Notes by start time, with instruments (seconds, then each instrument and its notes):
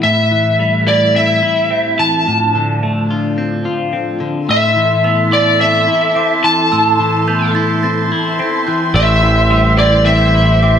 Already playing: string section A2, clean electric guitar C4
0.03 clean electric guitar A2, string section A3 E4, lead electric guitar E5
0.31 clean electric guitar E3
0.59 clean electric guitar G3
0.87 clean electric guitar E4, lead electric guitar D5
1.15 clean electric guitar C4, lead electric guitar E5
1.43 clean electric guitar E4
1.70 clean electric guitar C4
1.99 clean electric guitar E3, lead electric guitar A5
2.27 clean electric guitar A2, string section F3 D4
2.55 clean electric guitar D3
2.83 clean electric guitar A3
3.10 clean electric guitar F4
3.38 clean electric guitar C4
3.65 clean electric guitar F4
3.93 clean electric guitar C4
4.20 clean electric guitar D3
4.49 clean electric guitar A2, string section E4 A4 A5 C6, lead electric guitar E5, glockenspiel E6
4.76 clean electric guitar E3
5.04 clean electric guitar B3, glockenspiel E6
5.31 clean electric guitar E4, lead electric guitar D5, glockenspiel D6
5.60 clean electric guitar C4, lead electric guitar E5, glockenspiel E6
5.87 clean electric guitar E4
6.15 clean electric guitar C4, glockenspiel D6
6.44 clean electric guitar E3, lead electric guitar A5, glockenspiel C6
6.72 clean electric guitar A2, glockenspiel E6
7.00 clean electric guitar E3
7.28 clean electric guitar B3, glockenspiel G6
7.55 clean electric guitar E4, glockenspiel A6
7.83 clean electric guitar C4, glockenspiel A6
8.12 clean electric guitar E4
8.39 clean electric guitar C4, glockenspiel B6
8.67 clean electric guitar E3, glockenspiel G6
8.94 picked electric bass A1, clean electric guitar A2, string section C5 G5, lead electric guitar E5, glockenspiel E6
9.23 clean electric guitar E3
9.50 clean electric guitar G3, glockenspiel E6
9.78 clean electric guitar E4, lead electric guitar D5, glockenspiel D6
10.06 clean electric guitar C4, lead electric guitar E5, glockenspiel E6
10.35 clean electric guitar E4
10.63 clean electric guitar C4, glockenspiel D6